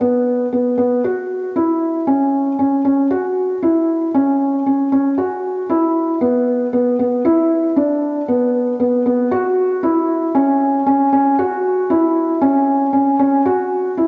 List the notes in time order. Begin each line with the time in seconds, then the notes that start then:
0.01 B3
0.53 B3
0.78 B3
1.04 F#4
1.56 E4
2.07 C#4
2.59 C#4
2.85 C#4
3.10 F#4
3.62 E4
4.14 C#4
4.66 C#4
4.92 C#4
5.18 F#4
5.69 E4
6.21 B3
6.73 B3
6.99 B3
7.25 E4
7.76 D4
8.28 B3
8.80 B3
9.06 B3
9.31 F#4
9.83 E4
10.35 C#4
10.86 C#4
11.13 C#4
11.39 F#4
11.90 E4
12.41 C#4
12.93 C#4
13.19 C#4
13.46 F#4
13.97 E4